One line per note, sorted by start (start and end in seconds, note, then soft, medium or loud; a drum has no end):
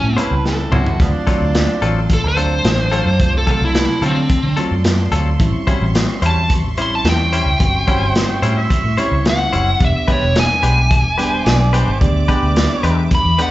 0.00 0.15 A2 medium
0.00 0.18 C#4 medium
0.00 0.96 E5 medium
0.00 0.96 G5 medium
0.00 0.98 A5 medium
0.17 0.93 G3 medium
0.17 0.34 G3 medium
0.17 0.93 C4 medium
0.17 0.93 C#4 medium
0.17 0.34 C#4 medium
0.17 0.34 E4 medium
0.17 0.93 E4 medium
0.17 0.25 E4 medium
0.17 0.27 G4 medium
0.17 0.45 B4 medium
0.17 0.34 C5 medium
0.17 closed hi-hat medium
0.31 0.67 C#2 medium
0.46 0.72 A4 medium
0.46 snare medium
0.72 0.96 C#2 medium
0.72 0.90 G3 medium
0.72 0.89 C#4 medium
0.72 0.89 E4 medium
0.72 1.00 F#4 medium
0.72 0.89 C5 medium
0.72 mid tom medium
0.86 floor tom medium
0.99 1.12 D2 medium
0.99 1.25 F#3 medium
0.99 1.07 G3 medium
0.99 1.25 A3 medium
0.99 1.07 B3 medium
0.99 1.25 C4 medium
0.99 1.94 D4 loud
0.99 1.25 F4 medium
0.99 5.36 D5 medium
0.99 5.36 A5 medium
0.99 9.76 C6 medium
0.99 kick loud
0.99 closed hi-hat medium
1.27 2.28 F#3 medium
1.27 1.45 F#3 medium
1.27 2.28 A3 medium
1.27 1.44 C4 medium
1.27 2.29 C4 medium
1.27 1.44 F4 medium
1.27 2.29 F4 medium
1.27 1.44 A4 medium
1.27 muted fingered electric bass stroke soft
1.27 kick medium
1.27 closed hi-hat medium
1.41 1.65 D2 medium
1.55 snare loud
1.55 closed hi-hat medium
1.82 2.24 A1 medium
1.82 2.00 F#3 medium
1.82 1.99 C4 medium
1.82 1.99 F4 medium
1.82 1.99 A4 medium
1.82 closed hi-hat medium
2.10 kick medium
2.10 closed hi-hat medium
2.14 2.26 A4 medium
2.24 2.60 D2 medium
2.28 3.33 C5 medium
2.37 3.13 F#3 medium
2.37 2.54 F#3 medium
2.37 3.13 A3 medium
2.37 2.54 C4 medium
2.37 3.13 C4 medium
2.37 3.13 D4 medium
2.37 2.54 F4 medium
2.37 2.54 A4 medium
2.37 closed hi-hat medium
2.65 3.01 A1 medium
2.65 snare loud
2.65 closed hi-hat medium
2.92 3.09 F#3 medium
2.92 3.09 C4 medium
2.92 3.09 F4 medium
2.92 3.09 A4 medium
2.92 closed hi-hat medium
3.06 3.18 F#2 medium
3.19 3.44 C2 medium
3.19 3.45 F#3 medium
3.19 3.45 A3 medium
3.19 3.45 C4 medium
3.19 3.45 F4 medium
3.19 kick medium
3.19 closed hi-hat medium
3.38 3.49 A4 medium
3.46 4.49 F3 medium
3.46 4.48 F#3 medium
3.46 3.65 F#3 soft
3.46 4.48 A3 medium
3.46 4.48 C4 medium
3.46 3.64 C4 medium
3.46 3.64 F4 medium
3.46 3.64 A4 medium
3.46 kick medium
3.46 closed hi-hat medium
3.51 3.63 A4 medium
3.61 3.85 C2 medium
3.65 4.03 E4 medium
3.75 snare loud
3.75 closed hi-hat medium
4.02 4.26 D3 medium
4.02 4.20 F#3 medium
4.02 4.20 C4 medium
4.02 4.19 F4 medium
4.02 4.19 A4 medium
4.02 closed hi-hat medium
4.06 4.58 C4 medium
4.30 kick medium
4.30 closed hi-hat medium
4.43 4.55 D3 medium
4.57 5.33 F#3 medium
4.57 4.75 F#3 medium
4.57 5.33 A3 medium
4.57 4.74 C4 medium
4.57 5.33 C4 medium
4.57 4.74 F4 medium
4.57 5.34 F4 medium
4.57 4.74 A4 medium
4.57 closed hi-hat medium
4.71 5.07 F#2 medium
4.84 snare loud
4.84 closed hi-hat medium
5.12 5.36 D2 medium
5.12 5.30 F#3 medium
5.12 5.29 C4 medium
5.12 5.29 F4 medium
5.12 5.29 A4 medium
5.12 closed hi-hat medium
5.39 5.52 A1 medium
5.39 5.65 G3 medium
5.39 5.65 C4 medium
5.39 5.65 C#4 medium
5.39 5.65 E4 medium
5.39 13.51 E5 medium
5.39 9.76 C#6 medium
5.39 kick loud
5.39 closed hi-hat medium
5.67 6.68 G3 medium
5.67 5.85 G3 medium
5.67 6.69 C4 medium
5.67 6.69 C#4 medium
5.67 5.85 C#4 medium
5.67 5.84 E4 medium
5.67 6.69 F#4 medium
5.67 5.84 C5 medium
5.67 muted fingered electric bass stroke soft
5.67 kick medium
5.67 closed hi-hat medium
5.81 6.05 A1 medium
5.95 snare loud
5.95 closed hi-hat medium
6.22 6.64 E2 medium
6.22 6.40 G3 medium
6.22 6.40 C#4 medium
6.22 6.40 E4 medium
6.22 6.39 C5 medium
6.22 closed hi-hat medium
6.26 6.51 A5 medium
6.50 kick medium
6.50 closed hi-hat medium
6.64 7.00 A1 medium
6.77 7.53 G3 medium
6.77 6.95 G3 soft
6.77 7.53 C4 medium
6.77 7.53 C#4 medium
6.77 6.95 C#4 medium
6.77 7.54 E4 medium
6.77 6.95 E4 medium
6.77 6.94 C5 medium
6.77 closed hi-hat medium
6.82 6.93 C6 medium
6.95 7.06 A5 medium
7.04 7.41 E2 medium
7.04 snare loud
7.04 closed hi-hat medium
7.09 8.14 G5 medium
7.33 7.50 G3 medium
7.33 7.50 C#4 medium
7.33 7.50 E4 medium
7.33 7.49 C5 medium
7.33 closed hi-hat medium
7.46 7.58 C#2 medium
7.60 7.84 G1 medium
7.60 7.85 G3 medium
7.60 7.85 C4 medium
7.60 7.86 C#4 medium
7.60 7.86 F#4 medium
7.60 kick loud
7.60 closed hi-hat medium
7.87 8.88 G3 medium
7.87 8.05 G3 medium
7.87 8.89 C4 medium
7.87 8.89 C#4 medium
7.87 8.05 C#4 medium
7.87 8.05 E4 medium
7.87 8.89 F#4 medium
7.87 8.04 C5 medium
7.87 8.15 C5 medium
7.87 kick medium
7.87 closed hi-hat medium
8.01 8.26 G1 medium
8.15 8.32 C5 medium
8.15 snare loud
8.15 closed hi-hat medium
8.30 8.59 G5 medium
8.42 8.67 A2 medium
8.42 8.60 G3 medium
8.42 8.60 C#4 medium
8.42 8.60 E4 medium
8.42 8.59 C5 medium
8.42 closed hi-hat medium
8.58 9.00 E5 medium
8.70 kick medium
8.70 closed hi-hat medium
8.84 8.96 A2 medium
8.97 9.73 G3 medium
8.97 9.15 G3 medium
8.97 9.73 C4 medium
8.97 9.74 C#4 medium
8.97 9.15 C#4 medium
8.97 9.74 E4 medium
8.97 9.15 E4 medium
8.97 9.14 C5 medium
8.97 9.25 C#5 medium
8.97 closed hi-hat medium
9.11 9.48 C#2 medium
9.25 snare loud
9.25 closed hi-hat medium
9.30 9.81 F#5 medium
9.53 9.77 F#1 medium
9.53 9.70 G3 medium
9.53 9.70 C#4 medium
9.53 9.70 E4 medium
9.53 9.69 C5 medium
9.53 closed hi-hat medium
9.80 9.93 E1 medium
9.80 10.05 G#3 medium
9.80 10.05 B3 medium
9.80 10.06 D4 medium
9.80 10.06 G4 medium
9.80 13.51 D6 medium
9.80 kick loud
9.80 closed hi-hat medium
9.85 10.09 E5 medium
10.08 11.09 G3 medium
10.08 11.09 G#3 medium
10.08 10.25 G#3 soft
10.08 11.09 B3 medium
10.08 11.09 D4 medium
10.08 10.25 D4 medium
10.08 10.25 G4 medium
10.08 10.25 B4 medium
10.08 muted fingered electric bass stroke soft
10.08 kick medium
10.08 closed hi-hat medium
10.12 10.37 C#5 medium
10.22 10.46 E1 medium
10.36 11.99 G#5 loud
10.36 snare loud
10.36 closed hi-hat medium
10.63 11.05 B1 medium
10.63 10.80 G#3 medium
10.63 10.80 D4 medium
10.63 10.80 G4 medium
10.63 10.80 B4 medium
10.63 closed hi-hat medium
10.91 kick medium
10.91 closed hi-hat medium
11.05 11.41 E1 medium
11.18 11.94 G3 loud
11.18 11.94 G#3 medium
11.18 11.35 G#3 medium
11.18 11.94 B3 medium
11.18 11.94 D4 medium
11.18 11.35 D4 medium
11.18 11.35 G4 medium
11.18 11.32 G4 medium
11.18 11.35 B4 medium
11.18 closed hi-hat medium
11.34 11.48 C5 medium
11.46 11.82 B1 medium
11.46 11.73 D5 medium
11.46 snare loud
11.46 closed hi-hat medium
11.73 11.91 G#3 medium
11.73 11.90 D4 medium
11.73 11.90 G4 medium
11.73 11.90 B4 medium
11.73 12.00 C5 medium
11.73 closed hi-hat medium
11.88 11.99 G#1 medium
12.01 12.25 D2 medium
12.01 12.26 G#3 medium
12.01 12.26 B3 medium
12.01 12.26 D4 medium
12.01 12.26 G4 medium
12.01 12.27 D5 medium
12.01 kick medium
12.01 closed hi-hat medium
12.28 13.29 G#3 medium
12.28 12.46 G#3 medium
12.28 13.29 B3 medium
12.28 13.29 D4 medium
12.28 12.45 D4 medium
12.28 13.29 G4 medium
12.28 12.45 G4 medium
12.28 12.45 B4 medium
12.28 12.96 D5 medium
12.28 kick medium
12.28 closed hi-hat medium
12.43 12.67 D2 medium
12.56 snare loud
12.56 closed hi-hat medium
12.83 13.07 E2 medium
12.83 13.01 G#3 medium
12.83 13.00 D4 medium
12.83 13.00 G4 medium
12.83 13.00 B4 medium
12.83 closed hi-hat medium
13.11 13.39 B5 medium
13.11 kick medium
13.11 closed hi-hat medium
13.25 13.37 E2 medium
13.38 13.51 G#3 medium
13.38 13.51 B3 medium
13.38 13.51 D4 medium
13.38 13.51 G4 medium
13.38 13.51 B4 medium
13.38 closed hi-hat medium
13.42 13.51 F#5 medium